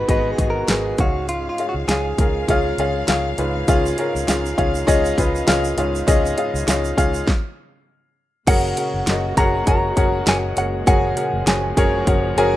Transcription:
Already playing: G#2 B2 D#3 G#3 B3 F#4 G#4 D#5
0.08 G#1 B3 F#4 G#4 B4 D#5, kick, closed hi-hat
0.31 G#4
0.38 G#1 B3 F#4 G#4 D#5, kick, closed hi-hat
0.50 A#4
0.68 G#1 B3 F#4 G#4 A#4, snare, closed hi-hat
0.98 C#2 G#2 C#3 C#4 F#4 G#4 F5, kick, closed hi-hat
1.29 F4, closed hi-hat
1.49 F4
1.58 C#4 F4 G#4 F5, closed hi-hat
1.69 F#4
1.74 C#2
1.88 C#2 C#4 F4 G#4 F5, snare, closed hi-hat
2.18 C#2 C#4 F4 G#4 A#4, kick, closed hi-hat
2.48 C#2 C#4 F4 G#4 F5, kick, closed hi-hat
2.78 C#2 C#4 F4 G#4 F5, closed hi-hat
3.08 C#2 C#4 F4 G#4 F5, snare, closed hi-hat
3.38 C#2 G#2 C#4 F4 G#4 B4, closed hi-hat
3.68 C#2 C#4 F4 G#4 F5, kick, closed hi-hat, shaker
3.86 shaker
3.98 C#4 F4 G#4 A#4, closed hi-hat
4.15 C#2, shaker
4.28 C#2 C#4 F4 G#4 F5, snare, closed hi-hat, shaker
4.46 shaker
4.58 C#2 C#4 F4 G#4 F5, kick, closed hi-hat
4.75 shaker
4.87 C#2 C#4 F4 G#4 D#5, kick, closed hi-hat, shaker
5.05 shaker
5.18 C#2 C#4 F4 G#4 B4, kick, closed hi-hat, shaker
5.36 shaker
5.47 C#2 C#4 F4 G#4 F5, snare, closed hi-hat, shaker
5.64 shaker
5.77 C#2 G#2 C#4 F4 G#4 F5, closed hi-hat
5.95 shaker
6.07 C#2 C#4 F4 G#4 D#5, kick, closed hi-hat, shaker
6.26 shaker
6.38 C#4 F4 G#4 F5, closed hi-hat
6.54 C#2, shaker
6.67 C#2 C#4 F4 G#4 F5, snare, closed hi-hat, shaker
6.85 shaker
6.97 C#2 C#4 F4 G#4 F5, kick, closed hi-hat, shaker
7.14 shaker
7.27 kick, snare
8.47 F#1 A#2 C#3 G#3 C#4 F#4 G#4 A#4 F#5, kick, closed hi-hat, crash
8.77 C#4 F#4 G#4 A#4 F#5, closed hi-hat
8.94 F#1
9.07 F#1 C#4 F#4 G#4 A#4 D#5, snare, closed hi-hat
9.37 F#1 C#4 F#4 G#4 A#4 F#5 A#5, kick, closed hi-hat
9.67 F#1 C#4 F#4 G#4 A#4 F#5 A#5, kick, closed hi-hat
9.97 F#1 C#4 F#4 G#4 A#4 F#5, kick, closed hi-hat
10.27 F#1 C#4 F#4 G#4 A#4 F#5 G#5, snare, closed hi-hat
10.57 F#1 C#4 F#4 G#4 A#4 F#5, closed hi-hat
10.87 F#1 C#3 F3 C#4 F#4 G#4 A#4 F#5 G#5, kick, closed hi-hat
11.16 C#4 F#4 G#4 A#4 F#5, closed hi-hat
11.33 F#1
11.46 F#1 C#4 F#4 G#4 A#4 G#5, snare, closed hi-hat
11.77 F#1 C#4 F#4 G#4 A#4 C#5, kick, closed hi-hat
12.07 F#1 C#4 F#4 G#4 A#4 F#5, kick, closed hi-hat
12.37 F#1 C#4 F#4 G#4 A#4 G#5, closed hi-hat

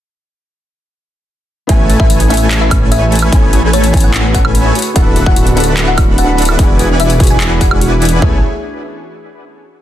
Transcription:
1.67 A1 A3 B3 C#4 E4 G#4 A4 B4 C#5 E5 G#5, kick, closed hi-hat
1.71 G#5
1.89 A4, closed hi-hat
2.00 A1 A3 A4 B4 C#5 E5 G#5, kick
2.10 closed hi-hat
2.20 G#4, closed hi-hat
2.28 B3 C#4 E4 E5, closed hi-hat
2.32 G#5, closed hi-hat
2.37 closed hi-hat
2.51 A4, clap, closed hi-hat
2.61 B4 E5
2.71 kick, closed hi-hat, high woodblock
2.81 G#4
2.91 G#4 E5, closed hi-hat
3.12 A4, closed hi-hat
3.15 closed hi-hat
3.19 B4, closed hi-hat, high woodblock
3.30 A1 A3 B3 C#4 E4 A4 B4 C#5 G#5, kick, closed hi-hat
3.34 G#5
3.43 G#4
3.53 G#4, closed hi-hat
3.63 A1 A3 A4 B4 C#5 G#5
3.73 A4 C#5, closed hi-hat
3.83 B4, closed hi-hat
3.92 B3 C#4 E4, kick, closed hi-hat
3.96 G#5, closed hi-hat
4.00 G#4 F#5, closed hi-hat
4.14 G#4, clap, closed hi-hat
4.34 A4 F#5, kick, closed hi-hat
4.45 B4, high woodblock
4.55 closed hi-hat
4.65 G#4
4.75 D3 B3 E4 F#4, closed hi-hat
4.79 closed hi-hat
4.82 closed hi-hat
4.94 D1 B3 D4 E4 F#4 A4 B4 E5 F#5, kick, closed hi-hat
5.06 B4
5.16 closed hi-hat
5.26 D1 D4 F#4 A4 B4 E5 F#5, kick
5.36 F#4, closed hi-hat
5.47 closed hi-hat
5.55 B3 E4 F#4 A4 F#5, closed hi-hat
5.60 closed hi-hat
5.64 B4, closed hi-hat
5.77 clap, closed hi-hat
5.88 F#4 F#5
5.98 kick, closed hi-hat, high woodblock
6.18 A4 F#5, closed hi-hat
6.28 B4
6.38 closed hi-hat
6.42 closed hi-hat
6.45 F#4, closed hi-hat, high woodblock
6.57 E1 E3 B3 D4 E4 F#4 G#4 B4 D5 F#5 G#5, kick, closed hi-hat
6.61 G#4
6.79 G#4, closed hi-hat
6.90 E1 E4 B4 D5 F#5 G#5
7.00 E5, closed hi-hat
7.10 F#4, closed hi-hat
7.18 B3 D4 F#4, kick, closed hi-hat
7.22 G#4, closed hi-hat
7.27 G#5, closed hi-hat
7.40 G#4, clap, closed hi-hat
7.51 B4
7.61 F#5, kick, closed hi-hat
7.71 F#4, high woodblock
7.81 F#4, closed hi-hat
8.02 G#4, closed hi-hat
8.05 closed hi-hat
8.09 B4, closed hi-hat
8.19 A1 A3 B3 C#4 E4 G#4 A4 B4 C#5 E5 G#5, kick, floor tom
8.25 G#4

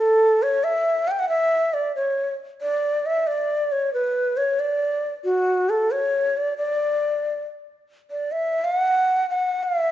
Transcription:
0.00 A4
0.43 C#5
0.64 E5
1.08 F#5 G5
1.19 F#5
1.29 E5
1.74 D5
1.96 C#5
2.61 D5
3.06 E5
3.27 D5
3.72 C#5
3.94 B4
4.37 C#5
4.60 D5
5.24 F#4
5.70 A4
5.91 C#5
6.37 D5
6.57 D5
8.11 D5
8.32 E5
8.65 F5
8.76 F#5
9.30 F#5
9.63 E5

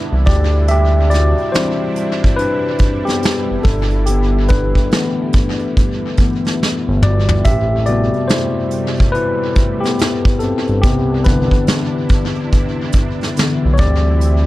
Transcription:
Already playing: E3 B3 D4 E4
0.12 C2
0.25 D2 C3 G3 G4 D5, kick, open hi-hat
0.68 G4 E5, closed hi-hat
1.10 F#4 D5, snare, closed hi-hat
1.38 closed hi-hat
1.52 E3 G3 C4 E4 C5, snare, closed hi-hat
1.96 closed hi-hat
2.24 kick
2.36 D4 B4, closed hi-hat
2.79 kick, closed hi-hat
3.05 B3 G4, snare, closed hi-hat
3.23 snare, closed hi-hat
3.51 G1
3.63 G1 D3 A4, kick, open hi-hat
3.67 D4
3.90 closed hi-hat
4.06 B3 G4, closed hi-hat
4.48 D4 B4, kick, closed hi-hat
4.75 kick
4.91 E3 A3 B3, snare, closed hi-hat
5.33 kick, closed hi-hat
5.59 closed hi-hat
5.77 kick, closed hi-hat
6.17 E3 A3 B3, kick, closed hi-hat
6.45 snare, closed hi-hat
6.63 snare
6.88 G1
7.03 G1 F#4 D5, mid tom
7.29 floor tom
7.44 A1 C3 G3 A3 G4 E5, kick, closed hi-hat
7.86 C3 G3 B3 F#4 D5, closed hi-hat
8.13 closed hi-hat
8.28 E4 C5, snare, closed hi-hat
8.71 closed hi-hat
8.97 kick, closed hi-hat
9.12 E4 B4, closed hi-hat
9.55 kick, closed hi-hat
9.80 G4, closed hi-hat
9.85 B3, snare
9.99 snare, closed hi-hat
10.25 kick
10.39 G1 C4 A4, closed hi-hat
10.67 G1, closed hi-hat
10.82 C2 C3 B3 D4 E4 G4, kick, closed hi-hat
11.24 D3 E3 B3 D4 B4, kick, snare, closed hi-hat
11.51 kick, closed hi-hat
11.67 snare, closed hi-hat
12.09 kick, closed hi-hat
12.35 closed hi-hat
12.52 kick, closed hi-hat
12.92 kick, closed hi-hat
13.21 snare, closed hi-hat
13.37 D3 E3 B3, snare, closed hi-hat
13.65 B1
13.74 C#5, closed hi-hat
13.78 D2 D3 E3 G3 C4 E4 G4 D5, kick
14.21 closed hi-hat

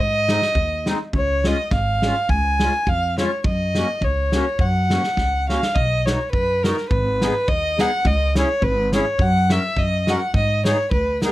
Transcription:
Already playing: G#2
0.00 D#5
0.29 G#3 C4 D#4, snare
0.42 snare
0.55 D#2, kick
0.86 G#3 C4 D#4, snare
1.13 C#2 C#5, kick
1.44 G#3 C#4 F4 D#5, snare
1.71 G#1 F5, kick, snare
2.02 G#3 C#4 F4, snare
2.29 C#2 G#5, kick
2.60 G#3 C#4 F4, snare
2.87 F2 F5, kick
3.18 G#3 C#4 F4 C#5, snare
3.44 F#2 D#5, kick
3.75 A#3 C#4 F#4, snare
4.01 C#2 C#5, kick
4.32 A#3 C#4 F#4, snare
4.59 F#2 F#5, kick
4.90 A#3 C#4 F#4, snare
5.04 snare
5.17 C#2, kick, snare
5.48 A#3 C#4 F#4 F5, snare
5.63 snare
5.75 B1 D#5, kick
6.06 B3 D#4 F#4 C#5, snare, hi-hat pedal
6.31 F#2 B4, kick
6.63 B3 D#4 F#4 A#4, snare, hi-hat pedal
6.78 snare
6.89 G#1 B4, kick
7.21 B3 D#4 G#4, snare, hi-hat pedal
7.48 D#2 D#5, kick
7.79 B3 D#4 G#4 F#5, snare, hi-hat pedal
8.05 C#2 D#5, kick
8.35 C#4 E4 G#4 C#5, snare, hi-hat pedal
8.62 G#1 B4, kick
8.92 C#4 E4 G#4 C#5, snare, hi-hat pedal
9.19 F#2 F#5, kick
9.50 C#4 F#4 A#4 E5, snare, hi-hat pedal
9.76 F#2 D#5, kick
10.07 C#4 F#4 A#4 F#5, snare, hi-hat pedal
10.34 G#2 D#5, kick
10.65 B3 D#4 G#4 C#5, snare, hi-hat pedal
10.91 D2 B4, kick
11.22 B3 D#4 G#4 A#4, snare, hi-hat pedal

